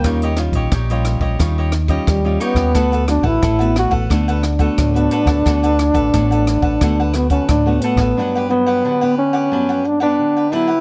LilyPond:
<<
  \new Staff \with { instrumentName = "Cavaquinho" } { \time 4/4 \key d \major \tempo 4 = 89 <ees' g' des'' ees''>16 <g' des'' ees''>16 r16 <g' des'' ees''>16 <ees' g' des'' ees''>16 <g' des'' ees''>8 <g' des'' ees''>16 <ees' g' des'' ees''>16 <g' des'' ees''>16 r16 <g' des'' ees''>8 <g' des'' ees''>16 <ees' g' des'' ees''>16 <g' des'' ees''>16 | <d' a' b' fis''>16 <a' b' fis''>16 r16 <a' b' fis''>16 <d' a' b' fis''>16 <a' b' fis''>8 <a' b' fis''>16 <d' a' b' fis''>16 <a' b' fis''>16 r16 <a' b' fis''>8 <a' b' fis''>16 <d' a' b' fis''>16 <a' b' fis''>16 | <d' a' b' fis''>16 <a' b' fis''>16 r16 <a' b' fis''>16 <d' a' b' fis''>16 <a' b' fis''>8 <a' b' fis''>16 <d' a' b' fis''>16 <a' b' fis''>16 r16 <a' b' fis''>8 <a' b' fis''>16 <d' a' b' fis''>16 <a' b' fis''>16 | <d' g' b' fis''>16 <g' b' fis''>16 r16 <g' b' fis''>16 <d' g' b' fis''>16 <g' b' fis''>8 <g' b' fis''>16 <d' g' b' fis''>16 <g' b' fis''>16 r16 <g' b' fis''>8 <g' b' fis''>16 <d' g' b' fis''>16 <g' b' fis''>16 | }
  \new Staff \with { instrumentName = "Trombone" } { \time 4/4 \key d \major bes8 r2 r8 g8 b8~ | b8 d'16 e'8. fis'8 d'2~ | d'2~ d'8 b16 cis'16 d'8 b8~ | b8 b4 cis'4 d'16 d'8. e'8 | }
  \new Staff \with { instrumentName = "Nylon-string guitar" } { \time 4/4 \key d \major << { <g des' f'>8 <g des' f'>8 r16 <g des' f'>8. <g des' f'>8 r16 <g des' f'>8 <g des' f'>8. | <a b fis'>8 <a b fis'>8 r16 <a b fis'>8. <a b fis'>8 r16 <a b fis'>8 <a b fis'>8. | <a b fis'>4 <a b fis'>8. r16 <a b fis'>16 r16 <a b fis'>8 r16 <a b fis'>8. | <fis b d'>8 <fis b d'>8. <b d'>8. <fis b>8 r16 <b d'>8. <fis b d'>16 r16 | } \\ { ees4 bes,4 ees4 r4 | d4 a,4 d4 a,4 | d4 a,4 d4 a,4 | g,4 d4 g,4 d4 | } >> }
  \new Staff \with { instrumentName = "Fingered electric bass" } { \clef bass \time 4/4 \key d \major ees,8. bes,,16 bes,,8. bes,,16 ees,4 ees,8 r16 ees,16 | d,8. a,,16 a,,8. a,,16 d,4 d,8 r16 d,16 | d,8. a,,16 a,,8. a,,16 d,4 d,8 r16 a,,16 | r1 | }
  \new DrumStaff \with { instrumentName = "Drums" } \drummode { \time 4/4 <hh bd ss>16 hh16 <hh ss>16 <hh bd>16 <hh bd ss>16 hh16 <hh ss>16 bd16 <hh bd ss>8 <hh ss>16 <hh bd>16 <hh bd ss>8 hh16 <bd ss>16 | <hh bd ss>16 hh16 <hh ss>16 bd16 <hh bd ss>16 hh16 <hh ss>16 bd16 <hh bd ss>16 hh16 <hh ss>16 <hh bd>16 <hh bd ss>16 hh16 hh16 <bd ss>16 | <hh bd ss>16 hh16 <hh ss>16 <hh bd>16 <hh bd ss>16 hh16 <hh ss>16 bd16 <hh bd ss>8 <hh ss>16 <hh bd>16 <hh bd ss>8 hh16 <bd ss>16 | r4 r4 r4 r4 | }
>>